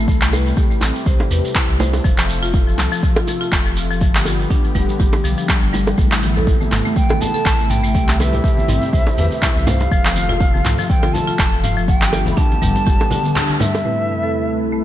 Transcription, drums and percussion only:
0.08 kick, shekere
0.21 clap, shekere
0.33 high bongo, shekere
0.46 shekere
0.57 kick, shekere
0.71 shekere
0.81 clap, low bongo, shekere
0.95 shekere
1.06 kick, shekere
1.20 high bongo, shekere
1.31 shekere
1.45 shekere
1.55 kick, clap, shekere
1.69 shekere
1.80 low bongo, shekere
1.93 high bongo, shekere
2.05 kick, shekere
2.18 clap, shekere
2.29 shekere
2.43 shekere
2.54 kick, low bongo, shekere
2.68 shekere
2.78 clap, low bongo, shekere
2.92 shekere
3.03 kick, shekere
3.16 high bongo, shekere
3.27 low bongo, shekere
3.41 shekere
3.52 kick, clap, shekere
3.66 shekere
3.77 shekere
3.91 shekere
4.01 kick, shekere
4.15 clap, shekere
4.25 high bongo, shekere
4.40 shekere
4.50 kick, shekere
4.64 shekere
4.75 kick, low bongo, shekere
4.89 shekere
5.00 kick, low bongo, shekere
5.13 high bongo, shekere
5.24 shekere
5.38 shekere
5.49 kick, clap, shekere
5.62 shekere
5.74 low bongo, shekere
5.87 high bongo, shekere
5.98 kick, shekere
6.11 clap, muted conga, shekere
6.22 high conga, shekere
6.37 low conga, shekere
6.47 kick, low bongo, muted conga, shekere
6.61 high conga, shekere
6.72 clap, mid tom, low bongo, shekere
6.85 muted conga, shekere
6.96 kick, shekere
7.09 high bongo, high conga, shekere
7.21 low bongo, high conga, low conga, shekere
7.35 muted conga, shekere
7.46 kick, clap, shekere
7.60 shekere
7.70 mid tom, muted conga, shekere
7.84 shekere
7.95 kick, shekere
8.08 clap, muted conga, shekere
8.20 high bongo, high conga, shekere
8.33 low conga, shekere
8.44 kick, muted conga, shekere
8.57 high conga, shekere
8.68 mid tom, low bongo, shekere
8.82 muted conga, shekere
8.93 kick, shekere
9.07 high bongo, shekere
9.18 high conga, low conga, shekere
9.30 muted conga, high conga, shekere
9.42 kick, clap, low conga, shekere
9.55 high conga, shekere
9.67 mid tom, low bongo, muted conga, low conga, shekere
9.80 high bongo, shekere
9.91 kick, shekere
10.04 clap, muted conga, shekere
10.16 high conga, shekere
10.29 low conga, shekere
10.40 kick, low bongo, muted conga, shekere
10.55 high conga, shekere
10.65 clap, mid tom, low bongo, shekere
10.78 muted conga, shekere
10.90 kick, shekere
11.03 high bongo, high conga, shekere
11.14 low bongo, high conga, low conga, shekere
11.27 muted conga, shekere
11.39 kick, clap, shekere
11.53 shekere
11.64 mid tom, muted conga, shekere
11.78 shekere
11.88 kick, shekere
12.01 clap, muted conga, shekere
12.12 high bongo, high conga, shekere
12.26 low conga, shekere
12.37 kick, low bongo, muted conga, shekere
12.51 high conga, shekere
12.62 kick, mid tom, low bongo, shekere
12.76 muted conga, shekere
12.86 kick, low bongo, shekere
13.00 high bongo, shekere
13.11 low bongo, high conga, low conga, shekere
13.24 muted conga, high conga, shekere
13.36 clap, low conga, shekere
13.50 high conga, shekere
13.59 mid tom, low bongo, muted conga, low conga, shekere
13.75 high bongo, shekere

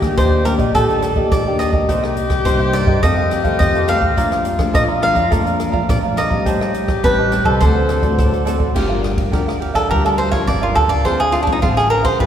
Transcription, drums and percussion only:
0.02 kick, cross-stick, closed hi-hat
0.18 kick, closed hi-hat
0.45 cross-stick, closed hi-hat
0.59 kick, closed hi-hat
0.75 kick, cross-stick, closed hi-hat
0.90 closed hi-hat
1.02 cross-stick, closed hi-hat
1.16 kick
1.31 kick, cross-stick, closed hi-hat
1.60 cross-stick, closed hi-hat
1.73 kick
1.89 kick, closed hi-hat
2.03 cross-stick
2.17 closed hi-hat
2.30 kick, cross-stick, closed hi-hat
2.46 kick, closed hi-hat
2.74 cross-stick, closed hi-hat
2.87 kick
3.03 kick, cross-stick, closed hi-hat
3.31 cross-stick, closed hi-hat
3.45 kick, closed hi-hat
3.60 kick, cross-stick, closed hi-hat
3.75 closed hi-hat
3.88 cross-stick, closed hi-hat
4.02 kick
4.17 kick, closed hi-hat
4.32 cross-stick, closed hi-hat
4.45 closed hi-hat
4.59 kick, cross-stick, closed hi-hat
4.75 kick, closed hi-hat
5.02 cross-stick, closed hi-hat
5.16 kick, closed hi-hat
5.32 kick, cross-stick, closed hi-hat
5.47 closed hi-hat
5.60 cross-stick, closed hi-hat
5.73 kick
5.89 kick, cross-stick, closed hi-hat
6.17 cross-stick, closed hi-hat
6.31 kick
6.46 kick, closed hi-hat
6.61 cross-stick
6.74 closed hi-hat
6.88 kick, cross-stick, closed hi-hat
7.04 kick, closed hi-hat
7.32 cross-stick, closed hi-hat
7.45 kick
7.61 kick, cross-stick, closed hi-hat
7.89 cross-stick, closed hi-hat
8.03 kick, closed hi-hat
8.18 kick, cross-stick, closed hi-hat
8.33 closed hi-hat
8.47 cross-stick, closed hi-hat
8.60 kick
8.76 kick, cross-stick, crash
9.04 cross-stick, ride
9.18 kick, ride
9.33 kick, cross-stick, ride
9.49 cross-stick
9.62 ride
9.75 kick, cross-stick, ride
9.91 kick, ride
10.06 cross-stick
10.19 ride
10.32 kick, cross-stick, ride
10.48 kick, cross-stick, ride
10.77 ride
10.90 kick, ride
11.05 kick, cross-stick, ride
11.33 cross-stick, ride
11.47 kick, ride
11.63 kick, cross-stick, ride
11.78 cross-stick
11.91 ride
12.05 kick, cross-stick, ride
12.20 kick, ride

